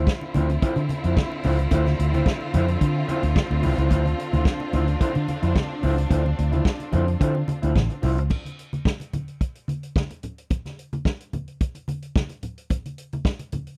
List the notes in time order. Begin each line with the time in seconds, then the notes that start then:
Already playing: D3 C4 E4 F4
0.07 kick, snare, muted conga
0.21 muted clean electric guitar stroke, muted conga
0.34 D2 F3 C4 E4, closed hi-hat, high conga, low conga
0.49 muted clean electric guitar stroke, closed hi-hat
0.62 F3 C4 E4, muted fingered electric bass stroke, kick, closed hi-hat, muted conga
0.76 D3, muted clean electric guitar stroke, closed hi-hat, muted conga
0.89 muted clean electric guitar stroke, closed hi-hat, high conga
1.04 F2 F3 C4 E4, closed hi-hat
1.17 kick, snare, high conga
1.31 muted clean electric guitar stroke, muted conga
1.43 C#2 F3 C4 E4, open hi-hat, low conga
1.58 muted clean electric guitar stroke, closed hi-hat
1.71 D2 F3 C4 E4, kick, closed hi-hat, muted conga, low conga
1.86 muted clean electric guitar stroke, snare, closed hi-hat, muted conga, high conga
1.99 D2, muted clean electric guitar stroke, closed hi-hat
2.12 F3 C4 E4, closed hi-hat, high conga
2.26 kick, snare
2.41 muted clean electric guitar stroke, muted conga
2.53 F2 F3 C4 E4, closed hi-hat, high conga, low conga
2.68 muted clean electric guitar stroke, closed hi-hat
2.81 D3, kick, closed hi-hat, muted conga
2.96 muted clean electric guitar stroke
3.08 F3 C4 E4, closed hi-hat, high conga
3.23 D2, muted clean electric guitar stroke, closed hi-hat
3.35 muted clean electric guitar stroke, kick, snare, high conga
3.50 D2, muted clean electric guitar stroke, muted conga
3.62 C2 F3 C4 E4, open hi-hat, low conga
3.77 C#2 F3 C4 E4, closed hi-hat
3.90 D2 F3 C4 D4 E4, kick, closed hi-hat, low conga
4.05 muted clean electric guitar stroke, closed hi-hat, muted conga, high conga
4.18 muted clean electric guitar stroke, closed hi-hat
4.32 D2 F3 C4 E4, closed hi-hat, high conga
4.45 kick, snare, muted conga
4.60 muted clean electric guitar stroke, muted conga
4.72 D2 F3 C4 E4, closed hi-hat, high conga, low conga
4.87 muted clean electric guitar stroke, closed hi-hat
5.00 F3 C4 E4, muted fingered electric bass stroke, kick, closed hi-hat
5.14 D3, muted clean electric guitar stroke, closed hi-hat, muted conga
5.27 muted clean electric guitar stroke, closed hi-hat, high conga
5.42 F2 F3 C4 E4, closed hi-hat
5.54 muted clean electric guitar stroke, kick, snare, muted conga, high conga
5.70 muted clean electric guitar stroke
5.82 C#2 F3 C4 E4, open hi-hat, low conga
5.97 muted clean electric guitar stroke, closed hi-hat
6.10 D2 F3 C4 E4, kick, closed hi-hat, low conga
6.25 muted clean electric guitar stroke, muted conga, high conga
6.37 D2, muted clean electric guitar stroke, closed hi-hat
6.52 F3 C4 E4, closed hi-hat, high conga
6.65 kick, snare, muted conga
6.80 muted clean electric guitar stroke, closed hi-hat, muted conga
6.92 F2 F3 C4 E4, closed hi-hat, high conga, low conga
7.07 muted clean electric guitar stroke, closed hi-hat
7.20 D3 F3 C4 E4, kick, closed hi-hat, muted conga
7.35 muted clean electric guitar stroke, muted conga
7.48 muted clean electric guitar stroke, closed hi-hat, high conga
7.62 D2 F3 C4 E4, closed hi-hat
7.76 A1, kick, snare, high conga
7.90 muted clean electric guitar stroke, closed hi-hat
8.02 C2 F3 C4 E4, open hi-hat, low conga
8.18 C#2, muted clean electric guitar stroke, closed hi-hat
8.30 kick, crash, muted conga, low conga
8.45 closed hi-hat, high conga
8.59 closed hi-hat
8.73 closed hi-hat, high conga
8.85 kick, snare
9.00 closed hi-hat, muted conga
9.13 closed hi-hat, high conga, low conga
9.28 closed hi-hat
9.41 kick, closed hi-hat
9.55 closed hi-hat
9.68 closed hi-hat, high conga
9.83 closed hi-hat
9.96 kick, snare, muted conga, high conga
10.10 closed hi-hat, muted conga
10.23 closed hi-hat, low conga
10.38 closed hi-hat
10.50 kick, closed hi-hat, muted conga, low conga
10.65 snare, closed hi-hat, high conga
10.79 closed hi-hat
10.93 closed hi-hat, high conga
11.05 kick, snare, muted conga
11.20 closed hi-hat
11.33 closed hi-hat, high conga, low conga
11.48 closed hi-hat
11.61 kick, closed hi-hat, muted conga
11.75 closed hi-hat, muted conga
11.88 closed hi-hat, high conga
12.02 closed hi-hat
12.16 kick, snare, muted conga, high conga
12.29 closed hi-hat, muted conga
12.43 closed hi-hat, low conga
12.58 closed hi-hat
12.70 kick, closed hi-hat, muted conga, low conga
12.85 closed hi-hat, high conga
12.98 closed hi-hat
13.13 closed hi-hat, high conga
13.25 kick, snare, muted conga
13.39 closed hi-hat, muted conga
13.52 closed hi-hat, high conga, low conga
13.67 closed hi-hat